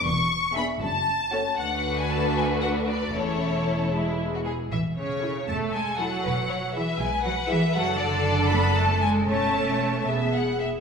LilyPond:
<<
  \new Staff \with { instrumentName = "Violin section" } { \time 6/8 \key a \major \tempo 4. = 78 cis'''4 b''8 a''4. | fis''8. gis''16 a''8 gis''8 fis''8 d''8 | cis''4. r4. | e''8 cis''4 a''8 gis''8 fis''8~ |
fis''4 e''8 gis''8 fis''8 e''8 | fis''8 d''4 b''8 a''8 gis''8 | a''4. r4. | }
  \new Staff \with { instrumentName = "Violin section" } { \time 6/8 \key a \major r4 <gis' e''>8 r4 <fis' cis''>8 | <fis' b'>2. | <e' a'>4. e'8. fis'16 gis'8 | r4. a'4. |
b'8 cis''8 b'2 | a'2. | cis''4. e''8 fis''8 e''8 | }
  \new Staff \with { instrumentName = "Viola section" } { \time 6/8 \key a \major r4 <b d'>8 r4 <a cis'>8 | <a d'>2. | <a cis'>4. <gis e'>4 r8 | r4 <e' a'>8 r4 <e' a'>8 |
r4 <e' gis'>8 r4 <e' gis'>8 | <d' a'>2. | <cis' a'>4. <b gis'>4 r8 | }
  \new Staff \with { instrumentName = "Cello section" } { \clef bass \time 6/8 \key a \major e,4. fis,4. | d,2. | e,2~ e,8 r8 | e8 cis4 a8 gis8 fis8~ |
fis4 e8 gis8 fis8 e8 | fis8 d4 b8 a8 gis8 | a4. r4. | }
  \new Staff \with { instrumentName = "Double bass section" } { \clef bass \time 6/8 \key a \major e,,4. fis,,4. | d,2. | e,,2~ e,,8 r8 | a,,4. e,,4. |
e,,4. b,,4. | fis,,2. | e,,4. e,,4 r8 | }
>>